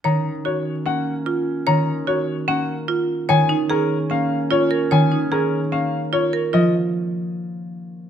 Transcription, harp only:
\new Staff \with { instrumentName = "Harp" } { \time 4/4 \key ees \minor \tempo 4 = 148 << { ees2 bes2 | ees2 bes2 | ees4 des'4 bes2 | ees4 des'4 bes2~ |
bes1 | } \\ { r1 | r1 | r1 | r1 |
f8 r2. r8 | } >> }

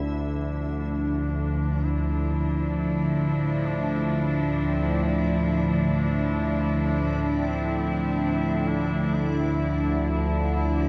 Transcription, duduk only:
\new Staff \with { instrumentName = "Duduk" } { \time 4/4 \key d \minor \tempo 4 = 66 d'2 e'4 e'4 | d'8 r8 c'4 r8 d'4 d'8 | c'4. d'8 e'4 r8 e'8 | }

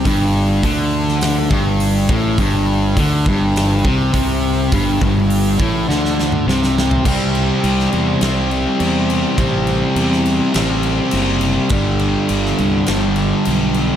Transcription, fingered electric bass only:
\new Staff \with { instrumentName = "Fingered electric bass" } { \clef bass \time 4/4 \key c \lydian \tempo 4 = 103 g,,4 d,4. g,,4 a,,8 | g,,4 d,8 g,,4 c,8 c,4 | g,,8 g,,4 a,,8 d,4 c,4 | c,4 c,8 e,8 c,4 e,4 |
a,,4 e,4 a,,4 fis,,4 | g,,4 g,,8 c,8 g,,4 b,,4 | }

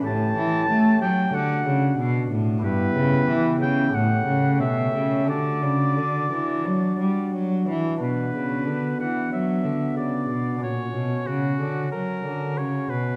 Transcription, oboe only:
\new Staff \with { instrumentName = "Oboe" } { \time 4/4 \key d \major \tempo 4 = 92 a''4. g''8 fis''4 r4 | b'4. g''8 fis''4 e''4 | d''2. r4 | \key b \minor b'4. fis''8 e''4 d''4 |
cis''4 fis'4 ais'4 cis''8 b'8 | }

